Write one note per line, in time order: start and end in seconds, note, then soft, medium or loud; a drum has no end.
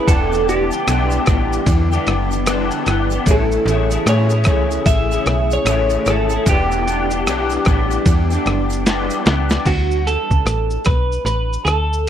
0.06 0.71 E1 loud
0.06 3.24 D3 medium
0.06 0.46 E3 medium
0.06 9.63 E3 medium
0.06 3.24 G3 medium
0.06 0.47 B3 medium
0.06 3.24 B3 medium
0.06 0.47 D4 medium
0.06 9.62 E4 medium
0.06 0.47 G4 loud
0.06 0.48 A4 medium
0.06 kick loud
0.06 ride medium
0.06 shaker medium
0.32 shaker soft
0.34 shaker medium
0.47 0.71 E3 medium
0.47 0.71 B3 medium
0.47 0.72 D4 medium
0.47 1.64 G4 medium
0.47 0.70 G4 medium
0.47 ride soft
0.47 shaker soft
0.47 shaker medium
0.71 0.87 G4 medium
0.71 shaker medium
0.73 0.87 B3 soft
0.73 0.87 D4 soft
0.73 shaker medium
0.87 1.19 B1 loud
0.87 1.25 E3 medium
0.87 1.26 B3 loud
0.87 1.27 D4 loud
0.87 1.28 G4 medium
0.87 cross-stick loud
0.87 ride medium
0.87 shaker medium
1.10 shaker medium
1.26 1.59 A1 medium
1.26 1.90 E3 medium
1.26 1.91 B3 medium
1.26 1.91 D4 medium
1.26 1.90 G4 medium
1.26 kick medium
1.26 cross-stick loud
1.26 ride soft
1.26 shaker medium
1.26 shaker soft
1.53 shaker soft
1.53 shaker medium
1.66 1.98 E2 loud
1.66 kick loud
1.66 ride medium
1.66 shaker medium
1.68 shaker medium
1.91 2.47 B3 medium
1.91 2.48 D4 medium
1.91 2.47 G4 medium
1.91 shaker medium
1.91 shaker soft
2.07 2.71 F#1 loud
2.07 cross-stick loud
2.07 ride soft
2.07 shaker soft
2.31 shaker medium
2.46 2.85 E3 medium
2.46 2.86 B3 loud
2.46 2.87 D4 loud
2.46 2.88 G4 medium
2.46 cross-stick loud
2.46 ride medium
2.46 shaker medium
2.71 shaker medium
2.71 shaker soft
2.86 3.19 G1 loud
2.86 3.11 E3 medium
2.86 3.11 B3 medium
2.86 3.11 D4 medium
2.86 3.10 G4 medium
2.86 cross-stick loud
2.86 ride soft
2.86 shaker medium
3.10 3.27 B3 soft
3.10 3.27 D4 medium
3.10 3.27 G4 medium
3.10 shaker medium
3.26 3.58 A1 loud
3.26 6.43 C#3 medium
3.26 6.43 A3 medium
3.26 3.65 A3 medium
3.26 3.67 C#4 medium
3.26 3.67 E4 medium
3.26 kick loud
3.26 ride medium
3.26 shaker medium
3.28 4.05 A4 loud
3.28 shaker medium
3.52 shaker soft
3.66 3.98 A1 loud
3.66 3.91 A3 medium
3.66 3.91 C#4 medium
3.66 3.91 E4 medium
3.66 3.89 G#4 medium
3.66 ride soft
3.66 shaker medium
3.90 4.06 C#4 soft
3.90 4.07 E4 medium
3.90 4.06 G#4 medium
3.90 shaker soft
3.90 shaker medium
4.06 4.48 A2 loud
4.06 4.31 A3 medium
4.06 4.31 C#4 loud
4.06 4.32 E4 medium
4.06 4.31 G#4 medium
4.06 4.84 C#5 medium
4.06 cross-stick medium
4.06 ride medium
4.06 shaker medium
4.29 4.47 G#4 medium
4.29 shaker soft
4.29 shaker medium
4.34 4.47 C#4 soft
4.34 4.48 E4 soft
4.44 cross-stick loud
4.44 ride soft
4.44 shaker medium
4.46 4.79 C#2 medium
4.46 5.11 A3 medium
4.46 5.11 C#4 medium
4.46 5.12 E4 medium
4.46 5.10 G#4 medium
4.46 kick loud
4.46 shaker medium
4.71 shaker soft
4.71 shaker medium
4.86 5.18 A1 loud
4.86 5.52 E5 loud
4.86 kick medium
4.86 ride medium
4.86 shaker medium
4.88 shaker medium
5.11 5.67 C#4 medium
5.11 5.67 E4 medium
5.11 5.67 G#4 medium
5.11 shaker soft
5.11 shaker medium
5.26 5.58 B1 medium
5.26 cross-stick loud
5.26 ride soft
5.26 shaker soft
5.51 6.10 C#5 loud
5.51 shaker medium
5.65 5.98 A1 loud
5.65 6.05 A3 medium
5.65 6.06 C#4 loud
5.65 6.07 E4 medium
5.65 6.08 G#4 loud
5.65 cross-stick loud
5.65 ride medium
5.65 shaker medium
5.90 shaker medium
5.90 shaker soft
6.06 6.38 G#1 loud
6.06 6.31 A3 medium
6.06 6.31 C#4 medium
6.06 6.31 E4 medium
6.06 6.31 G#4 medium
6.06 cross-stick medium
6.06 ride soft
6.06 shaker medium
6.10 6.49 A4 medium
6.29 6.47 G#4 medium
6.29 shaker medium
6.34 6.49 C#4 soft
6.34 6.48 E4 medium
6.46 7.27 E1 loud
6.46 6.87 E3 medium
6.46 9.64 G3 medium
6.46 9.64 B3 medium
6.46 6.88 B3 medium
6.46 9.63 D4 medium
6.46 6.88 D4 medium
6.46 8.84 G4 medium
6.46 kick loud
6.46 ride medium
6.46 shaker medium
6.50 6.88 G4 loud
6.71 shaker medium
6.71 shaker soft
6.88 7.11 E3 medium
6.88 7.12 B3 medium
6.88 7.11 D4 medium
6.88 7.10 G4 medium
6.88 ride soft
6.88 shaker medium
7.10 7.27 B3 soft
7.10 7.27 D4 medium
7.10 7.27 G4 soft
7.10 shaker medium
7.26 7.58 B1 medium
7.26 7.66 E3 medium
7.26 7.67 B3 medium
7.26 7.68 D4 medium
7.26 7.68 G4 loud
7.26 cross-stick loud
7.26 ride medium
7.26 shaker medium
7.50 shaker soft
7.51 shaker medium
7.65 7.98 A1 medium
7.65 8.31 E3 medium
7.65 kick loud
7.65 cross-stick medium
7.65 ride soft
7.65 shaker soft
7.67 8.31 B3 medium
7.67 8.30 D4 medium
7.67 8.29 G4 medium
7.67 shaker medium
7.91 shaker medium
8.06 8.38 E2 loud
8.06 kick loud
8.06 ride medium
8.06 shaker medium
8.07 shaker medium
8.31 8.87 D4 medium
8.31 8.87 G4 medium
8.31 shaker medium
8.32 8.86 B3 medium
8.32 shaker medium
8.46 9.10 F#1 medium
8.46 cross-stick medium
8.46 ride soft
8.46 shaker soft
8.70 shaker medium
8.72 shaker medium
8.86 9.25 E3 loud
8.86 9.26 B3 medium
8.86 9.27 D4 medium
8.86 9.28 G4 loud
8.86 snare medium
8.86 ride medium
8.86 shaker medium
9.10 shaker medium
9.10 shaker soft
9.26 9.58 C#2 loud
9.26 9.51 E3 medium
9.26 9.51 B3 medium
9.26 9.51 D4 medium
9.26 9.50 G4 medium
9.26 snare loud
9.26 ride soft
9.26 shaker medium
9.26 shaker soft
9.50 9.67 G4 medium
9.50 snare loud
9.50 shaker medium
9.51 9.68 B3 soft
9.51 9.67 D4 medium
9.51 shaker medium
9.65 10.17 D2 loud
9.65 10.08 F#4 medium
9.65 kick medium
9.65 closed hi-hat medium
9.65 crash medium
9.65 shaker medium
9.91 shaker soft
10.07 10.83 A4 medium
10.07 closed hi-hat medium
10.07 shaker medium
10.30 10.43 C#2 medium
10.30 kick medium
10.30 shaker soft
10.46 10.78 A1 loud
10.46 cross-stick medium
10.46 closed hi-hat medium
10.46 shaker medium
10.70 shaker soft
10.85 11.18 B1 medium
10.85 11.25 B4 medium
10.85 kick medium
10.85 cross-stick medium
10.85 closed hi-hat soft
10.85 shaker medium
11.12 shaker soft
11.25 11.58 A1 medium
11.25 11.64 B4 medium
11.25 closed hi-hat medium
11.25 shaker medium
11.53 shaker soft
11.65 12.09 D2 medium
11.65 12.09 A4 medium
11.65 cross-stick medium
11.65 closed hi-hat soft
11.65 shaker soft
11.93 shaker medium